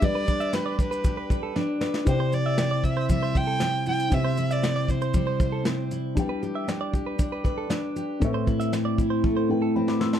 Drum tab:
SH |x-xxx-xxx-x-----|x-x-x-x-x-x-x-xx|x-xxx-xxx-x-x-x-|x-x-x-x-x-x-x-x-|
SD |----o-------o-oo|----o-------o---|----oo------o---|----o-------o---|
BD |o-o---o-o-o-----|o-----o-o-o-----|o-----o-o-o-----|o-----o-o-o-----|

SH |x-xxx-x---------|
SD |----o--------ooo|
BD |o-o---o-o-------|